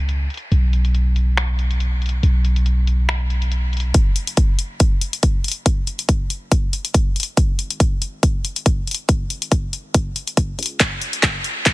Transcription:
Already playing: C#2
0.09 closed hi-hat
0.30 closed hi-hat
0.34 closed hi-hat
0.37 closed hi-hat
0.52 B1, closed hi-hat
0.73 closed hi-hat
0.85 closed hi-hat
0.95 closed hi-hat
1.16 closed hi-hat
1.37 finger snap, closed hi-hat
1.59 closed hi-hat
1.71 closed hi-hat
1.80 closed hi-hat
2.02 closed hi-hat
2.06 closed hi-hat
2.09 closed hi-hat
2.23 B1, closed hi-hat
2.45 closed hi-hat
2.56 closed hi-hat
2.66 closed hi-hat
2.87 closed hi-hat
3.09 finger snap, closed hi-hat
3.30 closed hi-hat
3.42 closed hi-hat
3.52 closed hi-hat
3.73 closed hi-hat
3.77 closed hi-hat
3.80 closed hi-hat
3.94 F#1, kick, closed hi-hat
4.16 closed hi-hat
4.27 closed hi-hat
4.37 kick, closed hi-hat
4.59 closed hi-hat
4.80 kick, closed hi-hat
5.01 closed hi-hat
5.13 closed hi-hat
5.23 kick, closed hi-hat
5.44 closed hi-hat
5.48 closed hi-hat
5.52 closed hi-hat
5.66 F#1, kick, closed hi-hat
5.87 closed hi-hat
5.99 closed hi-hat
6.09 kick, closed hi-hat
6.30 closed hi-hat
6.52 kick, closed hi-hat
6.73 closed hi-hat
6.85 closed hi-hat
6.94 kick, closed hi-hat
7.16 closed hi-hat
7.20 closed hi-hat
7.23 closed hi-hat
7.37 G#1, kick, closed hi-hat
7.59 closed hi-hat
7.70 closed hi-hat
7.80 kick, closed hi-hat
8.02 closed hi-hat
8.23 kick, closed hi-hat
8.45 closed hi-hat
8.56 closed hi-hat
8.66 kick, closed hi-hat
8.87 closed hi-hat
8.91 closed hi-hat
8.95 closed hi-hat
9.09 G#1, kick, closed hi-hat
9.30 closed hi-hat
9.42 closed hi-hat
9.52 kick, closed hi-hat
9.73 closed hi-hat
9.94 kick, closed hi-hat
10.16 closed hi-hat
10.27 closed hi-hat
10.37 kick, closed hi-hat
10.59 C#2, closed hi-hat
10.63 closed hi-hat
10.66 closed hi-hat
10.80 kick, clap, closed hi-hat
11.02 closed hi-hat
11.13 closed hi-hat
11.23 kick, clap, closed hi-hat
11.44 closed hi-hat
11.66 kick, clap, closed hi-hat

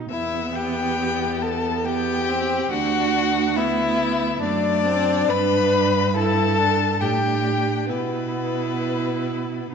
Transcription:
Already playing: D#4
0.10 E2 B3 E4 E5
0.55 G4 G5
1.42 A4 A5
1.85 B3 G4 G5
2.30 C4
2.71 D2 D4 F#4 F#5
3.56 B3 E4 E5
4.41 F#2 A3 D4 D5
4.86 C4
5.29 G2 D4 B4 B5
6.14 E4 A4 A5
6.58 D4
7.00 A2 D4 G4 G5
7.88 B2 B3 E4 B4
9.71 B2

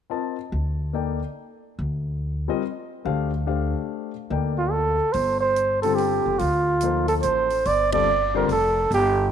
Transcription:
0.10 C4 F4 A#4 D#5 A5
0.52 D2
0.93 A#3 D#4 A4 D5 G5
1.79 D2
2.48 G3 C4 F4 A#4 D#5
3.05 D2 A3 D4 G4 C5 F5
3.46 A3 D4 G4 C5 F5
4.30 D2 A#3 D#4 A4 D5 G5
4.58 F4
4.71 A4
5.13 G1 C5, open hi-hat
5.40 C5
5.56 closed hi-hat
5.82 D3 G3 C4 F4 A4, open hi-hat
5.95 G4, open hi-hat
6.26 F#1
6.39 D2 F4, open hi-hat
6.81 F3 A#3 D#4 A4 C5, closed hi-hat
7.08 A4, open hi-hat
7.22 A1 C5, closed hi-hat
7.50 open hi-hat
7.65 G1 D5, open hi-hat
7.92 D3 G3 C4 F4 A4 D5, kick, ride
8.34 D3 G3 C4 F4 A#4 C5
8.49 F1 A4, open hi-hat
8.91 G1 G4, open hi-hat

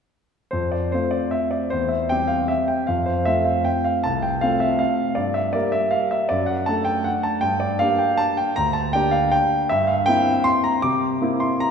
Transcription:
0.51 F2 C5
0.72 D5
0.92 A3 C4 F4 C5
1.11 D5
1.31 E5
1.51 D5
1.70 E2 C5
1.89 E5
2.09 G3 C4 G4 G5
2.28 F5
2.48 E5
2.68 G5
2.87 F2 F5
3.06 C5
3.25 A3 C4 F4 E5
3.45 F5
3.65 G5
3.84 F5
4.04 C2 A5
4.22 G5
4.41 A3 C4 F4 F5
4.60 E5
4.79 F5
5.15 G2 D5
5.34 E5
5.53 G3 A#3 A#4 D5
5.72 E5
5.91 F5
6.11 E5
6.29 F#2 D5
6.46 F#5
6.66 A3 D4 A4 A5
6.85 G5
7.04 F#5
7.23 A5
7.41 G2 G5
7.60 D5
7.79 A#3 D4 G4 F5
7.99 G5
8.17 A5
8.37 G5
8.56 D2 A#5
8.73 A5
8.93 A#3 D4 G4 G5
9.11 F5
9.32 G5
9.69 G2 E5
9.87 F5
10.06 A#3 C4 E4 G5
10.44 C6
10.64 A#5
10.82 C3 D6
11.22 A#3 C4 E4
11.40 C6
11.60 A#5

